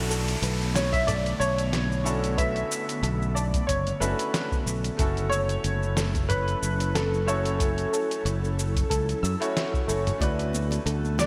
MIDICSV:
0, 0, Header, 1, 8, 480
1, 0, Start_track
1, 0, Key_signature, 2, "minor"
1, 0, Tempo, 652174
1, 1753, Time_signature, 4, 2, 24, 8
1, 8291, End_track
2, 0, Start_track
2, 0, Title_t, "Grand piano"
2, 0, Program_c, 0, 0
2, 551, Note_on_c, 0, 73, 94
2, 681, Note_on_c, 0, 76, 105
2, 688, Note_off_c, 0, 73, 0
2, 788, Note_on_c, 0, 74, 107
2, 795, Note_off_c, 0, 76, 0
2, 1028, Note_on_c, 0, 73, 108
2, 1038, Note_off_c, 0, 74, 0
2, 1751, Note_on_c, 0, 76, 97
2, 1772, Note_off_c, 0, 73, 0
2, 2464, Note_on_c, 0, 74, 89
2, 2494, Note_off_c, 0, 76, 0
2, 2692, Note_off_c, 0, 74, 0
2, 2701, Note_on_c, 0, 73, 96
2, 2947, Note_on_c, 0, 71, 86
2, 2955, Note_off_c, 0, 73, 0
2, 3401, Note_off_c, 0, 71, 0
2, 3897, Note_on_c, 0, 73, 109
2, 4356, Note_off_c, 0, 73, 0
2, 4627, Note_on_c, 0, 71, 96
2, 5116, Note_on_c, 0, 69, 92
2, 5125, Note_off_c, 0, 71, 0
2, 5355, Note_on_c, 0, 73, 102
2, 5362, Note_off_c, 0, 69, 0
2, 6045, Note_off_c, 0, 73, 0
2, 8245, Note_on_c, 0, 74, 93
2, 8291, Note_off_c, 0, 74, 0
2, 8291, End_track
3, 0, Start_track
3, 0, Title_t, "Synth pluck"
3, 0, Program_c, 1, 84
3, 74, Note_on_c, 1, 69, 76
3, 214, Note_off_c, 1, 69, 0
3, 316, Note_on_c, 1, 71, 74
3, 533, Note_off_c, 1, 71, 0
3, 794, Note_on_c, 1, 69, 93
3, 1012, Note_off_c, 1, 69, 0
3, 1035, Note_on_c, 1, 81, 82
3, 1175, Note_off_c, 1, 81, 0
3, 1513, Note_on_c, 1, 69, 74
3, 1654, Note_off_c, 1, 69, 0
3, 1748, Note_on_c, 1, 71, 81
3, 1969, Note_off_c, 1, 71, 0
3, 2228, Note_on_c, 1, 69, 97
3, 2449, Note_off_c, 1, 69, 0
3, 2467, Note_on_c, 1, 81, 80
3, 2611, Note_off_c, 1, 81, 0
3, 2955, Note_on_c, 1, 69, 79
3, 3095, Note_off_c, 1, 69, 0
3, 3193, Note_on_c, 1, 71, 75
3, 3412, Note_off_c, 1, 71, 0
3, 3671, Note_on_c, 1, 69, 102
3, 3891, Note_off_c, 1, 69, 0
3, 3914, Note_on_c, 1, 88, 78
3, 4054, Note_off_c, 1, 88, 0
3, 4392, Note_on_c, 1, 69, 80
3, 4533, Note_off_c, 1, 69, 0
3, 4636, Note_on_c, 1, 73, 78
3, 4853, Note_off_c, 1, 73, 0
3, 5113, Note_on_c, 1, 69, 97
3, 5331, Note_off_c, 1, 69, 0
3, 5354, Note_on_c, 1, 88, 75
3, 5494, Note_off_c, 1, 88, 0
3, 5835, Note_on_c, 1, 69, 78
3, 5975, Note_off_c, 1, 69, 0
3, 6075, Note_on_c, 1, 73, 76
3, 6293, Note_off_c, 1, 73, 0
3, 6550, Note_on_c, 1, 69, 106
3, 6770, Note_off_c, 1, 69, 0
3, 6791, Note_on_c, 1, 88, 84
3, 6933, Note_off_c, 1, 88, 0
3, 7272, Note_on_c, 1, 69, 74
3, 7413, Note_off_c, 1, 69, 0
3, 7514, Note_on_c, 1, 74, 84
3, 7732, Note_off_c, 1, 74, 0
3, 7992, Note_on_c, 1, 69, 99
3, 8211, Note_off_c, 1, 69, 0
3, 8234, Note_on_c, 1, 86, 80
3, 8291, Note_off_c, 1, 86, 0
3, 8291, End_track
4, 0, Start_track
4, 0, Title_t, "Grand piano"
4, 0, Program_c, 2, 0
4, 0, Control_c, 2, 64, 127
4, 0, Note_on_c, 2, 59, 91
4, 0, Note_on_c, 2, 62, 87
4, 0, Note_on_c, 2, 64, 87
4, 0, Note_on_c, 2, 66, 83
4, 0, Note_on_c, 2, 69, 101
4, 1481, Note_off_c, 2, 59, 0
4, 1484, Note_off_c, 2, 62, 0
4, 1489, Note_off_c, 2, 64, 0
4, 1495, Note_off_c, 2, 66, 0
4, 1499, Note_off_c, 2, 69, 0
4, 1501, Note_on_c, 2, 61, 87
4, 1505, Note_on_c, 2, 62, 89
4, 1508, Note_on_c, 2, 64, 84
4, 1514, Note_on_c, 2, 66, 87
4, 1516, Note_on_c, 2, 69, 106
4, 1721, Note_off_c, 2, 61, 0
4, 1723, Note_off_c, 2, 62, 0
4, 1725, Note_off_c, 2, 64, 0
4, 1728, Note_off_c, 2, 66, 0
4, 1729, Note_off_c, 2, 69, 0
4, 1734, Note_on_c, 2, 59, 83
4, 1746, Note_on_c, 2, 62, 80
4, 1756, Note_on_c, 2, 64, 72
4, 1764, Note_on_c, 2, 66, 81
4, 1774, Note_on_c, 2, 69, 92
4, 2918, Note_off_c, 2, 59, 0
4, 2924, Note_off_c, 2, 62, 0
4, 2929, Note_off_c, 2, 64, 0
4, 2933, Note_off_c, 2, 66, 0
4, 2938, Note_off_c, 2, 69, 0
4, 2945, Note_on_c, 2, 61, 90
4, 2947, Note_on_c, 2, 62, 90
4, 2952, Note_on_c, 2, 64, 90
4, 2957, Note_on_c, 2, 66, 86
4, 2961, Note_on_c, 2, 69, 102
4, 3059, Note_off_c, 2, 61, 0
4, 3060, Note_off_c, 2, 62, 0
4, 3062, Note_off_c, 2, 64, 0
4, 3065, Note_off_c, 2, 66, 0
4, 3067, Note_off_c, 2, 69, 0
4, 3657, Note_on_c, 2, 57, 100
4, 3667, Note_on_c, 2, 61, 91
4, 3676, Note_on_c, 2, 64, 91
4, 3684, Control_c, 2, 64, 0
4, 3686, Note_on_c, 2, 66, 89
4, 3693, Note_on_c, 2, 69, 111
4, 3797, Control_c, 2, 64, 127
4, 5319, Note_off_c, 2, 57, 0
4, 5324, Note_off_c, 2, 61, 0
4, 5328, Note_off_c, 2, 64, 0
4, 5333, Note_off_c, 2, 66, 0
4, 5337, Note_off_c, 2, 69, 0
4, 5346, Note_on_c, 2, 57, 95
4, 5348, Note_on_c, 2, 61, 84
4, 5354, Note_on_c, 2, 64, 85
4, 5357, Note_on_c, 2, 66, 85
4, 5365, Note_on_c, 2, 69, 102
4, 5563, Note_off_c, 2, 57, 0
4, 5565, Note_off_c, 2, 61, 0
4, 5568, Note_off_c, 2, 64, 0
4, 5569, Note_off_c, 2, 66, 0
4, 5573, Note_off_c, 2, 69, 0
4, 5574, Note_on_c, 2, 57, 86
4, 5583, Note_on_c, 2, 61, 80
4, 5592, Note_on_c, 2, 64, 75
4, 5602, Note_on_c, 2, 66, 77
4, 5610, Note_on_c, 2, 69, 90
4, 6758, Note_off_c, 2, 57, 0
4, 6762, Note_off_c, 2, 61, 0
4, 6767, Note_off_c, 2, 64, 0
4, 6772, Note_off_c, 2, 66, 0
4, 6776, Note_off_c, 2, 69, 0
4, 6917, Note_on_c, 2, 57, 98
4, 6922, Note_on_c, 2, 61, 88
4, 6924, Note_on_c, 2, 64, 90
4, 6928, Note_on_c, 2, 66, 87
4, 6933, Note_on_c, 2, 73, 105
4, 7243, Note_off_c, 2, 57, 0
4, 7246, Note_off_c, 2, 61, 0
4, 7247, Note_off_c, 2, 64, 0
4, 7249, Note_off_c, 2, 66, 0
4, 7252, Note_off_c, 2, 73, 0
4, 7262, Note_on_c, 2, 57, 82
4, 7268, Note_on_c, 2, 61, 74
4, 7274, Note_on_c, 2, 64, 73
4, 7279, Note_on_c, 2, 66, 74
4, 7280, Note_on_c, 2, 73, 90
4, 7482, Note_off_c, 2, 57, 0
4, 7485, Note_off_c, 2, 61, 0
4, 7488, Note_off_c, 2, 64, 0
4, 7490, Note_off_c, 2, 66, 0
4, 7491, Note_off_c, 2, 73, 0
4, 7494, Note_on_c, 2, 57, 96
4, 7502, Note_on_c, 2, 62, 87
4, 7513, Note_on_c, 2, 64, 81
4, 7519, Note_on_c, 2, 66, 85
4, 7524, Control_c, 2, 64, 0
4, 7530, Note_on_c, 2, 71, 110
4, 7650, Control_c, 2, 64, 127
4, 8291, Note_off_c, 2, 57, 0
4, 8291, Note_off_c, 2, 62, 0
4, 8291, Note_off_c, 2, 64, 0
4, 8291, Note_off_c, 2, 66, 0
4, 8291, Note_off_c, 2, 71, 0
4, 8291, End_track
5, 0, Start_track
5, 0, Title_t, "Ambient pad"
5, 0, Program_c, 3, 92
5, 0, Note_on_c, 3, 50, 85
5, 0, Note_on_c, 3, 57, 76
5, 0, Note_on_c, 3, 59, 92
5, 3642, Note_off_c, 3, 50, 0
5, 3642, Note_off_c, 3, 59, 0
5, 3644, Note_off_c, 3, 57, 0
5, 3664, Note_on_c, 3, 54, 85
5, 3666, Note_on_c, 3, 69, 93
5, 3668, Note_on_c, 3, 61, 72
5, 3668, Note_on_c, 3, 64, 75
5, 7479, Note_off_c, 3, 54, 0
5, 7480, Note_off_c, 3, 69, 0
5, 7481, Note_off_c, 3, 61, 0
5, 7481, Note_off_c, 3, 64, 0
5, 7517, Note_on_c, 3, 81, 90
5, 7518, Note_on_c, 3, 50, 85
5, 7520, Note_on_c, 3, 57, 78
5, 7521, Note_on_c, 3, 59, 75
5, 8291, Note_off_c, 3, 50, 0
5, 8291, Note_off_c, 3, 57, 0
5, 8291, Note_off_c, 3, 59, 0
5, 8291, Note_off_c, 3, 81, 0
5, 8291, End_track
6, 0, Start_track
6, 0, Title_t, "Fingered electric bass"
6, 0, Program_c, 4, 33
6, 0, Note_on_c, 4, 35, 97
6, 253, Note_off_c, 4, 35, 0
6, 310, Note_on_c, 4, 35, 108
6, 970, Note_off_c, 4, 35, 0
6, 1031, Note_on_c, 4, 35, 86
6, 1931, Note_off_c, 4, 35, 0
6, 2228, Note_on_c, 4, 35, 106
6, 2649, Note_off_c, 4, 35, 0
6, 2712, Note_on_c, 4, 30, 81
6, 2876, Note_off_c, 4, 30, 0
6, 2951, Note_on_c, 4, 30, 97
6, 3038, Note_off_c, 4, 30, 0
6, 3430, Note_on_c, 4, 35, 81
6, 3595, Note_off_c, 4, 35, 0
6, 3672, Note_on_c, 4, 30, 98
6, 4091, Note_off_c, 4, 30, 0
6, 4153, Note_on_c, 4, 30, 108
6, 4812, Note_off_c, 4, 30, 0
6, 4876, Note_on_c, 4, 30, 82
6, 5773, Note_off_c, 4, 30, 0
6, 6073, Note_on_c, 4, 30, 101
6, 6492, Note_off_c, 4, 30, 0
6, 6553, Note_on_c, 4, 37, 81
6, 6717, Note_off_c, 4, 37, 0
6, 6793, Note_on_c, 4, 42, 105
6, 6878, Note_off_c, 4, 42, 0
6, 7271, Note_on_c, 4, 30, 83
6, 7436, Note_off_c, 4, 30, 0
6, 7511, Note_on_c, 4, 38, 99
6, 7931, Note_off_c, 4, 38, 0
6, 7991, Note_on_c, 4, 38, 109
6, 8291, Note_off_c, 4, 38, 0
6, 8291, End_track
7, 0, Start_track
7, 0, Title_t, "Downlifter"
7, 0, Program_c, 5, 103
7, 0, Note_on_c, 5, 60, 78
7, 3674, Note_off_c, 5, 60, 0
7, 8291, End_track
8, 0, Start_track
8, 0, Title_t, "Drums"
8, 80, Note_on_c, 9, 69, 78
8, 154, Note_off_c, 9, 69, 0
8, 209, Note_on_c, 9, 42, 43
8, 212, Note_on_c, 9, 69, 33
8, 282, Note_off_c, 9, 42, 0
8, 285, Note_off_c, 9, 69, 0
8, 314, Note_on_c, 9, 42, 59
8, 317, Note_on_c, 9, 69, 43
8, 388, Note_off_c, 9, 42, 0
8, 391, Note_off_c, 9, 69, 0
8, 450, Note_on_c, 9, 69, 22
8, 524, Note_off_c, 9, 69, 0
8, 556, Note_on_c, 9, 38, 80
8, 559, Note_on_c, 9, 69, 78
8, 630, Note_off_c, 9, 38, 0
8, 633, Note_off_c, 9, 69, 0
8, 686, Note_on_c, 9, 36, 103
8, 690, Note_on_c, 9, 42, 45
8, 694, Note_on_c, 9, 69, 33
8, 760, Note_off_c, 9, 36, 0
8, 764, Note_off_c, 9, 42, 0
8, 767, Note_off_c, 9, 69, 0
8, 795, Note_on_c, 9, 42, 59
8, 795, Note_on_c, 9, 45, 85
8, 798, Note_on_c, 9, 69, 50
8, 868, Note_off_c, 9, 42, 0
8, 868, Note_off_c, 9, 45, 0
8, 872, Note_off_c, 9, 69, 0
8, 928, Note_on_c, 9, 42, 35
8, 932, Note_on_c, 9, 69, 23
8, 1002, Note_off_c, 9, 42, 0
8, 1005, Note_off_c, 9, 69, 0
8, 1039, Note_on_c, 9, 69, 71
8, 1112, Note_off_c, 9, 69, 0
8, 1166, Note_on_c, 9, 42, 47
8, 1170, Note_on_c, 9, 69, 32
8, 1240, Note_off_c, 9, 42, 0
8, 1243, Note_off_c, 9, 69, 0
8, 1274, Note_on_c, 9, 38, 78
8, 1274, Note_on_c, 9, 42, 55
8, 1277, Note_on_c, 9, 69, 45
8, 1347, Note_off_c, 9, 38, 0
8, 1347, Note_off_c, 9, 42, 0
8, 1351, Note_off_c, 9, 69, 0
8, 1412, Note_on_c, 9, 69, 22
8, 1485, Note_off_c, 9, 69, 0
8, 1515, Note_on_c, 9, 69, 77
8, 1589, Note_off_c, 9, 69, 0
8, 1647, Note_on_c, 9, 42, 43
8, 1650, Note_on_c, 9, 69, 33
8, 1720, Note_off_c, 9, 42, 0
8, 1724, Note_off_c, 9, 69, 0
8, 1752, Note_on_c, 9, 36, 122
8, 1754, Note_on_c, 9, 42, 57
8, 1757, Note_on_c, 9, 69, 44
8, 1825, Note_off_c, 9, 36, 0
8, 1828, Note_off_c, 9, 42, 0
8, 1831, Note_off_c, 9, 69, 0
8, 1883, Note_on_c, 9, 42, 31
8, 1887, Note_on_c, 9, 69, 21
8, 1957, Note_off_c, 9, 42, 0
8, 1960, Note_off_c, 9, 69, 0
8, 1998, Note_on_c, 9, 69, 80
8, 2071, Note_off_c, 9, 69, 0
8, 2127, Note_on_c, 9, 42, 47
8, 2131, Note_on_c, 9, 69, 34
8, 2201, Note_off_c, 9, 42, 0
8, 2204, Note_off_c, 9, 69, 0
8, 2233, Note_on_c, 9, 42, 55
8, 2237, Note_on_c, 9, 69, 44
8, 2307, Note_off_c, 9, 42, 0
8, 2310, Note_off_c, 9, 69, 0
8, 2371, Note_on_c, 9, 69, 23
8, 2444, Note_off_c, 9, 69, 0
8, 2476, Note_on_c, 9, 69, 76
8, 2550, Note_off_c, 9, 69, 0
8, 2604, Note_on_c, 9, 36, 102
8, 2605, Note_on_c, 9, 42, 43
8, 2608, Note_on_c, 9, 69, 35
8, 2677, Note_off_c, 9, 36, 0
8, 2679, Note_off_c, 9, 42, 0
8, 2682, Note_off_c, 9, 69, 0
8, 2712, Note_on_c, 9, 36, 61
8, 2715, Note_on_c, 9, 42, 59
8, 2718, Note_on_c, 9, 69, 50
8, 2785, Note_off_c, 9, 36, 0
8, 2789, Note_off_c, 9, 42, 0
8, 2792, Note_off_c, 9, 69, 0
8, 2847, Note_on_c, 9, 42, 31
8, 2850, Note_on_c, 9, 69, 24
8, 2920, Note_off_c, 9, 42, 0
8, 2924, Note_off_c, 9, 69, 0
8, 2956, Note_on_c, 9, 69, 73
8, 3030, Note_off_c, 9, 69, 0
8, 3085, Note_on_c, 9, 42, 48
8, 3089, Note_on_c, 9, 69, 35
8, 3159, Note_off_c, 9, 42, 0
8, 3162, Note_off_c, 9, 69, 0
8, 3194, Note_on_c, 9, 38, 82
8, 3194, Note_on_c, 9, 42, 54
8, 3198, Note_on_c, 9, 69, 45
8, 3268, Note_off_c, 9, 38, 0
8, 3268, Note_off_c, 9, 42, 0
8, 3271, Note_off_c, 9, 69, 0
8, 3324, Note_on_c, 9, 36, 110
8, 3329, Note_on_c, 9, 69, 24
8, 3398, Note_off_c, 9, 36, 0
8, 3402, Note_off_c, 9, 69, 0
8, 3437, Note_on_c, 9, 69, 82
8, 3511, Note_off_c, 9, 69, 0
8, 3565, Note_on_c, 9, 42, 44
8, 3569, Note_on_c, 9, 69, 33
8, 3639, Note_off_c, 9, 42, 0
8, 3642, Note_off_c, 9, 69, 0
8, 3673, Note_on_c, 9, 36, 127
8, 3673, Note_on_c, 9, 42, 57
8, 3676, Note_on_c, 9, 69, 49
8, 3746, Note_off_c, 9, 36, 0
8, 3746, Note_off_c, 9, 42, 0
8, 3749, Note_off_c, 9, 69, 0
8, 3806, Note_on_c, 9, 42, 30
8, 3809, Note_on_c, 9, 69, 22
8, 3880, Note_off_c, 9, 42, 0
8, 3883, Note_off_c, 9, 69, 0
8, 3917, Note_on_c, 9, 69, 82
8, 3990, Note_off_c, 9, 69, 0
8, 4042, Note_on_c, 9, 42, 43
8, 4046, Note_on_c, 9, 69, 36
8, 4116, Note_off_c, 9, 42, 0
8, 4119, Note_off_c, 9, 69, 0
8, 4152, Note_on_c, 9, 42, 52
8, 4156, Note_on_c, 9, 69, 42
8, 4226, Note_off_c, 9, 42, 0
8, 4229, Note_off_c, 9, 69, 0
8, 4290, Note_on_c, 9, 69, 23
8, 4363, Note_off_c, 9, 69, 0
8, 4392, Note_on_c, 9, 38, 85
8, 4395, Note_on_c, 9, 69, 86
8, 4466, Note_off_c, 9, 38, 0
8, 4469, Note_off_c, 9, 69, 0
8, 4526, Note_on_c, 9, 36, 109
8, 4526, Note_on_c, 9, 42, 42
8, 4529, Note_on_c, 9, 69, 35
8, 4599, Note_off_c, 9, 42, 0
8, 4600, Note_off_c, 9, 36, 0
8, 4603, Note_off_c, 9, 69, 0
8, 4635, Note_on_c, 9, 42, 60
8, 4635, Note_on_c, 9, 45, 81
8, 4638, Note_on_c, 9, 69, 50
8, 4708, Note_off_c, 9, 42, 0
8, 4708, Note_off_c, 9, 45, 0
8, 4712, Note_off_c, 9, 69, 0
8, 4768, Note_on_c, 9, 42, 30
8, 4771, Note_on_c, 9, 69, 23
8, 4842, Note_off_c, 9, 42, 0
8, 4845, Note_off_c, 9, 69, 0
8, 4878, Note_on_c, 9, 69, 79
8, 4952, Note_off_c, 9, 69, 0
8, 5007, Note_on_c, 9, 42, 46
8, 5010, Note_on_c, 9, 69, 36
8, 5081, Note_off_c, 9, 42, 0
8, 5084, Note_off_c, 9, 69, 0
8, 5118, Note_on_c, 9, 38, 73
8, 5118, Note_on_c, 9, 42, 53
8, 5122, Note_on_c, 9, 69, 44
8, 5192, Note_off_c, 9, 38, 0
8, 5192, Note_off_c, 9, 42, 0
8, 5195, Note_off_c, 9, 69, 0
8, 5254, Note_on_c, 9, 69, 23
8, 5327, Note_off_c, 9, 69, 0
8, 5360, Note_on_c, 9, 69, 79
8, 5433, Note_off_c, 9, 69, 0
8, 5487, Note_on_c, 9, 42, 43
8, 5490, Note_on_c, 9, 69, 33
8, 5560, Note_off_c, 9, 42, 0
8, 5563, Note_off_c, 9, 69, 0
8, 5595, Note_on_c, 9, 36, 115
8, 5595, Note_on_c, 9, 42, 52
8, 5598, Note_on_c, 9, 69, 46
8, 5668, Note_off_c, 9, 36, 0
8, 5668, Note_off_c, 9, 42, 0
8, 5672, Note_off_c, 9, 69, 0
8, 5725, Note_on_c, 9, 42, 29
8, 5729, Note_on_c, 9, 69, 22
8, 5799, Note_off_c, 9, 42, 0
8, 5802, Note_off_c, 9, 69, 0
8, 5840, Note_on_c, 9, 69, 77
8, 5913, Note_off_c, 9, 69, 0
8, 5971, Note_on_c, 9, 42, 42
8, 5974, Note_on_c, 9, 69, 36
8, 6044, Note_off_c, 9, 42, 0
8, 6048, Note_off_c, 9, 69, 0
8, 6078, Note_on_c, 9, 42, 52
8, 6082, Note_on_c, 9, 69, 45
8, 6152, Note_off_c, 9, 42, 0
8, 6155, Note_off_c, 9, 69, 0
8, 6215, Note_on_c, 9, 69, 22
8, 6288, Note_off_c, 9, 69, 0
8, 6322, Note_on_c, 9, 69, 77
8, 6396, Note_off_c, 9, 69, 0
8, 6445, Note_on_c, 9, 36, 108
8, 6452, Note_on_c, 9, 42, 43
8, 6455, Note_on_c, 9, 69, 32
8, 6519, Note_off_c, 9, 36, 0
8, 6526, Note_off_c, 9, 42, 0
8, 6529, Note_off_c, 9, 69, 0
8, 6554, Note_on_c, 9, 36, 66
8, 6559, Note_on_c, 9, 42, 57
8, 6562, Note_on_c, 9, 69, 49
8, 6628, Note_off_c, 9, 36, 0
8, 6632, Note_off_c, 9, 42, 0
8, 6636, Note_off_c, 9, 69, 0
8, 6691, Note_on_c, 9, 42, 29
8, 6694, Note_on_c, 9, 69, 24
8, 6764, Note_off_c, 9, 42, 0
8, 6768, Note_off_c, 9, 69, 0
8, 6803, Note_on_c, 9, 69, 79
8, 6876, Note_off_c, 9, 69, 0
8, 6931, Note_on_c, 9, 42, 45
8, 6934, Note_on_c, 9, 69, 35
8, 7005, Note_off_c, 9, 42, 0
8, 7008, Note_off_c, 9, 69, 0
8, 7041, Note_on_c, 9, 38, 76
8, 7041, Note_on_c, 9, 42, 53
8, 7045, Note_on_c, 9, 69, 45
8, 7115, Note_off_c, 9, 38, 0
8, 7115, Note_off_c, 9, 42, 0
8, 7118, Note_off_c, 9, 69, 0
8, 7165, Note_on_c, 9, 36, 112
8, 7175, Note_on_c, 9, 69, 24
8, 7239, Note_off_c, 9, 36, 0
8, 7249, Note_off_c, 9, 69, 0
8, 7279, Note_on_c, 9, 69, 84
8, 7353, Note_off_c, 9, 69, 0
8, 7412, Note_on_c, 9, 42, 42
8, 7412, Note_on_c, 9, 45, 60
8, 7415, Note_on_c, 9, 69, 33
8, 7485, Note_off_c, 9, 42, 0
8, 7485, Note_off_c, 9, 45, 0
8, 7489, Note_off_c, 9, 69, 0
8, 7511, Note_on_c, 9, 62, 50
8, 7513, Note_on_c, 9, 36, 107
8, 7519, Note_on_c, 9, 42, 55
8, 7522, Note_on_c, 9, 69, 46
8, 7585, Note_off_c, 9, 62, 0
8, 7587, Note_off_c, 9, 36, 0
8, 7593, Note_off_c, 9, 42, 0
8, 7596, Note_off_c, 9, 69, 0
8, 7650, Note_on_c, 9, 42, 28
8, 7653, Note_on_c, 9, 69, 21
8, 7723, Note_off_c, 9, 42, 0
8, 7727, Note_off_c, 9, 69, 0
8, 7753, Note_on_c, 9, 63, 85
8, 7761, Note_on_c, 9, 69, 76
8, 7826, Note_off_c, 9, 63, 0
8, 7834, Note_off_c, 9, 69, 0
8, 7881, Note_on_c, 9, 62, 81
8, 7889, Note_on_c, 9, 42, 42
8, 7892, Note_on_c, 9, 69, 36
8, 7955, Note_off_c, 9, 62, 0
8, 7962, Note_off_c, 9, 42, 0
8, 7966, Note_off_c, 9, 69, 0
8, 7997, Note_on_c, 9, 42, 53
8, 8000, Note_on_c, 9, 69, 43
8, 8071, Note_off_c, 9, 42, 0
8, 8074, Note_off_c, 9, 69, 0
8, 8122, Note_on_c, 9, 63, 56
8, 8130, Note_on_c, 9, 69, 22
8, 8195, Note_off_c, 9, 63, 0
8, 8204, Note_off_c, 9, 69, 0
8, 8228, Note_on_c, 9, 64, 89
8, 8235, Note_on_c, 9, 38, 78
8, 8238, Note_on_c, 9, 69, 76
8, 8291, Note_off_c, 9, 38, 0
8, 8291, Note_off_c, 9, 64, 0
8, 8291, Note_off_c, 9, 69, 0
8, 8291, End_track
0, 0, End_of_file